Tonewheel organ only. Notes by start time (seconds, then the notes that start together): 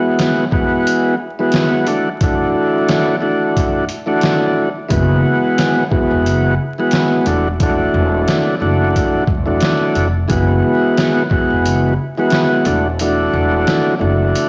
Already playing: E3 G#3 B3 F#4
0.51 E3 G#3 B3 F#4
1.39 E3 G#3 B3 F#4
1.86 E3 A3 D4 F#4
2.22 E3 A3 D4 F#4
3.21 E3 A3 D4 F#4
4.06 E3 A3 D4 F#4
4.89 E3 G#3 B3 F#4
5.91 E3 G#3 B3 F#4
6.78 E3 G#3 B3 F#4
7.26 E3 A3 D4 F#4
7.61 E3 A3 D4 F#4
8.60 E3 A3 D4 F#4
9.46 E3 A3 D4 F#4
10.28 E3 G#3 B3 F#4
11.30 E3 G#3 B3 F#4
12.18 E3 G#3 B3 F#4
12.65 E3 A3 D4 F#4
13.01 E3 A3 D4 F#4
13.99 E3 A3 D4 F#4